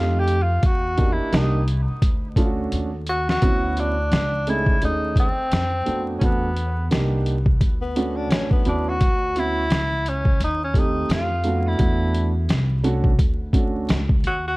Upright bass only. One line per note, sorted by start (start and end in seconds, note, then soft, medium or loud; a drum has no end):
0.00 0.60 F2 loud
0.63 1.16 E2 loud
1.18 muted upright bass stroke soft
1.33 1.85 C2 loud
1.88 muted upright bass stroke soft
2.02 2.69 D2 loud
2.72 3.39 D#2 medium
3.43 4.09 D2 loud
4.12 4.78 C#2 loud
4.83 5.35 D#2 medium
5.37 muted upright bass stroke soft
5.52 5.85 F2 medium
5.87 6.20 F2 medium
6.22 6.88 E2 loud
6.92 7.58 C2 medium
7.61 8.31 D2 medium
8.31 8.64 A1 medium
8.66 8.99 D#2 medium
9.01 9.67 D2 loud
9.71 10.37 C#2 medium
10.40 11.06 D#2 medium
11.09 11.76 F2 loud
11.80 12.46 E2 loud
12.49 13.16 C2 medium
13.19 13.85 D2 loud
13.89 14.22 C#2 loud
14.24 14.57 D#2 medium